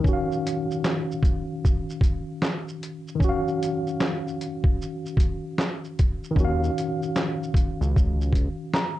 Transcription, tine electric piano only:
0.00 3.14 D#3 medium
0.00 3.16 C#4 medium
0.09 3.19 F#4 medium
0.13 3.21 F5 medium
3.15 6.30 D#3 medium
3.20 6.32 C#4 medium
3.24 6.34 F#4 medium
3.29 6.37 F5 medium
6.31 9.00 D#3 medium
6.35 9.00 C#4 medium
6.40 9.00 F#4 medium
6.45 9.00 F5 medium
8.74 9.00 A#5 medium

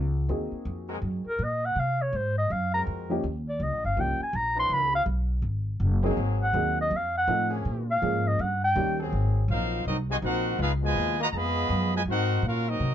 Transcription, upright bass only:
0.00 0.28 C#2 loud
0.29 0.51 D#2 medium
0.51 muted upright bass stroke soft
0.65 1.01 F2 medium
1.02 1.24 F#2 medium
1.26 muted upright bass stroke soft
1.39 1.75 A#2 loud
1.76 2.12 C3 medium
2.13 2.49 G#2 medium
2.50 2.86 F#2 medium
2.87 3.23 F2 medium
3.24 3.59 D#2 medium
3.60 3.72 C#2 medium
3.72 3.84 A#1 medium
3.84 3.96 G1 medium
3.97 4.19 C2 medium
4.19 muted upright bass stroke soft
4.33 4.69 A#1 loud
4.69 5.05 C#2 medium
5.06 5.42 B1 loud
5.42 5.79 G#1 medium
5.80 6.16 F#1 loud
6.17 6.53 G#1 medium
6.53 6.90 D#2 medium
6.91 7.27 F2 medium
7.28 7.64 A2 loud
7.65 8.01 A#2 medium
8.02 8.38 G#2 loud
8.39 8.74 G2 medium
8.76 9.11 D#2 loud
9.12 9.48 G#1 medium
9.48 9.84 A#1 medium
9.85 10.21 C2 medium
10.22 10.58 A#1 medium
10.59 10.95 C#2 medium
10.95 11.31 D#2 loud
11.33 11.68 F2 medium
11.69 12.05 F#2 loud
12.05 12.42 G#2 medium
12.42 12.78 A#2 loud
12.80 12.95 C3 medium

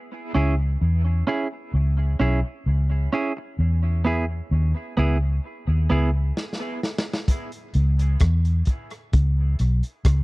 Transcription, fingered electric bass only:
0.35 0.76 C#2 medium
0.81 1.22 E2 medium
1.74 2.14 C#2 medium
2.20 2.41 B1 medium
2.66 3.07 C#2 medium
3.59 4.40 E2 medium
4.51 4.72 D#2 loud
4.98 5.38 C#2 medium
5.68 5.87 D#2 medium
5.90 6.31 C#2 medium
7.75 8.15 C#2 loud
8.21 8.61 E2 loud
9.14 9.54 C#2 loud
9.60 9.81 B1 medium
10.05 10.24 C#2 loud

